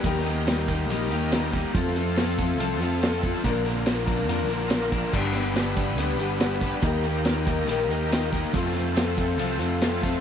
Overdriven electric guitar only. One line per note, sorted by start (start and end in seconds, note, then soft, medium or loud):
0.03 0.45 D#3 medium
0.03 0.46 G3 medium
0.03 0.26 A#3 medium
0.03 0.25 D#4 medium
0.03 0.23 G4 loud
0.24 0.46 A#3 medium
0.24 0.47 D#4 medium
0.24 0.48 G4 medium
0.46 0.89 D#3 medium
0.46 0.87 G3 loud
0.46 0.71 A#3 medium
0.46 0.68 D#4 loud
0.46 0.67 G4 loud
0.68 0.88 A#3 medium
0.68 0.90 D#4 medium
0.68 0.91 G4 medium
0.88 1.12 G3 medium
0.88 1.11 A#3 medium
0.88 1.10 D#4 medium
0.92 1.09 G4 medium
1.10 1.55 D#3 medium
1.10 1.30 G3 medium
1.10 1.31 A#3 medium
1.10 1.33 D#4 medium
1.10 1.34 G4 medium
1.31 1.73 G3 medium
1.31 1.56 A#3 medium
1.31 1.54 D#4 medium
1.31 1.52 G4 medium
1.53 1.75 A#3 medium
1.53 1.74 D#4 medium
1.53 1.73 G4 medium
1.74 2.16 F3 medium
1.74 1.97 C4 loud
1.74 1.97 F4 loud
1.74 1.94 A4 loud
1.96 2.17 C4 medium
1.96 2.19 F4 medium
1.96 2.19 A4 medium
2.17 2.58 F3 loud
2.17 2.41 C4 loud
2.17 2.40 F4 loud
2.17 2.37 A4 loud
2.38 2.58 C4 medium
2.38 2.60 F4 medium
2.38 2.61 A4 medium
2.58 2.82 F3 medium
2.58 2.81 C4 medium
2.58 2.80 F4 medium
2.58 2.79 A4 loud
2.80 3.00 F3 medium
2.80 3.02 C4 medium
2.80 3.03 F4 medium
2.80 3.04 A4 medium
3.02 3.43 F3 medium
3.02 3.25 C4 medium
3.02 3.23 F4 medium
3.02 3.21 A4 medium
3.22 3.45 C4 medium
3.22 3.44 F4 medium
3.22 3.43 A4 medium
3.43 3.84 A#2 medium
3.43 3.86 D3 medium
3.43 3.67 F3 loud
3.43 3.66 A#3 loud
3.43 3.66 D4 medium
3.43 3.64 A#4 medium
3.65 3.86 F3 medium
3.65 3.87 A#3 medium
3.65 3.89 D4 medium
3.65 3.88 A#4 medium
3.86 4.29 A#2 medium
3.86 4.29 D3 medium
3.86 4.09 F3 loud
3.86 4.08 A#3 loud
3.86 4.08 D4 loud
3.86 4.05 A#4 loud
4.07 4.27 F3 medium
4.07 4.29 A#3 medium
4.07 4.29 D4 medium
4.07 4.31 A#4 medium
4.29 4.50 F3 medium
4.29 4.49 A#3 medium
4.29 4.49 D4 medium
4.29 4.48 A#4 medium
4.49 4.94 A#2 medium
4.49 4.94 D3 medium
4.49 4.68 F3 medium
4.49 4.69 A#3 medium
4.49 4.71 D4 medium
4.49 4.72 A#4 medium
4.69 4.94 F3 medium
4.69 4.92 A#3 medium
4.69 4.91 D4 medium
4.69 4.90 A#4 medium
4.92 5.14 F3 medium
4.92 5.13 A#3 medium
4.92 5.13 D4 medium
4.92 5.12 A#4 medium
5.13 5.52 G2 medium
5.13 5.52 D3 medium
5.13 5.36 G3 medium
5.13 5.34 B3 medium
5.13 5.33 D4 medium
5.13 5.33 G4 medium
5.33 5.54 G3 medium
5.33 5.53 B3 medium
5.33 5.55 D4 medium
5.33 5.56 G4 medium
5.53 5.97 G2 medium
5.53 5.98 D3 loud
5.53 5.78 G3 loud
5.53 5.77 B3 loud
5.53 5.75 D4 loud
5.53 5.74 G4 loud
5.75 5.95 G3 medium
5.75 5.96 B3 medium
5.75 5.97 D4 medium
5.75 5.98 G4 medium
5.96 6.18 G3 medium
5.96 6.18 B3 medium
5.96 6.17 D4 medium
5.96 6.16 G4 medium
6.17 6.63 D3 medium
6.17 6.38 G3 medium
6.17 6.39 B3 medium
6.17 6.40 D4 medium
6.17 6.42 G4 medium
6.21 6.64 G2 medium
6.39 6.63 G3 medium
6.39 6.62 B3 medium
6.39 6.61 D4 medium
6.39 6.59 G4 medium
6.61 6.82 G3 medium
6.61 6.83 B3 medium
6.61 6.83 D4 medium
6.61 6.82 G4 medium
6.83 7.24 D#3 medium
6.83 7.07 A#3 medium
6.83 7.05 D#4 medium
6.83 7.03 G4 loud
7.04 7.25 A#3 medium
7.04 7.27 D#4 medium
7.04 7.28 G4 medium
7.25 7.67 D#3 loud
7.25 7.48 A#3 loud
7.25 7.47 D#4 medium
7.25 7.44 G4 loud
7.45 7.69 D#4 medium
7.45 7.70 G4 medium
7.49 7.68 A#3 medium
7.68 7.92 D#3 medium
7.68 7.91 A#3 medium
7.68 7.90 D#4 medium
7.68 7.89 G4 medium
7.90 8.09 D#3 medium
7.90 8.10 A#3 medium
7.90 8.11 D#4 medium
7.90 8.13 G4 medium
8.10 8.53 D#3 medium
8.10 8.35 A#3 medium
8.10 8.33 D#4 medium
8.10 8.31 G4 medium
8.32 8.55 A#3 medium
8.32 8.54 D#4 medium
8.32 8.53 G4 medium
8.54 8.94 F2 medium
8.54 8.95 C3 loud
8.54 8.78 F3 medium
8.54 8.76 A3 loud
8.54 8.75 C4 loud
8.54 8.74 F4 loud
8.74 8.96 A3 medium
8.74 8.97 C4 medium
8.74 8.98 F4 medium
8.79 8.96 F3 medium
8.95 9.39 F2 medium
8.95 9.40 C3 loud
8.95 9.20 F3 loud
8.95 9.18 A3 loud
8.95 9.17 C4 loud
8.95 9.16 F4 loud
9.17 9.36 F3 medium
9.17 9.37 A3 medium
9.17 9.39 C4 medium
9.17 9.40 F4 medium
9.37 9.60 F3 medium
9.37 9.59 A3 medium
9.37 9.58 C4 medium
9.41 9.58 F4 medium
9.59 10.04 C3 medium
9.59 9.80 F3 medium
9.59 9.80 A3 medium
9.59 9.82 C4 medium
9.59 9.83 F4 medium
9.63 10.05 F2 medium
9.81 10.04 F3 medium
9.81 10.03 A3 medium
9.81 10.02 C4 medium
9.81 10.01 F4 medium
10.02 10.20 F3 medium
10.02 10.20 A3 medium
10.02 10.20 C4 medium
10.02 10.20 F4 medium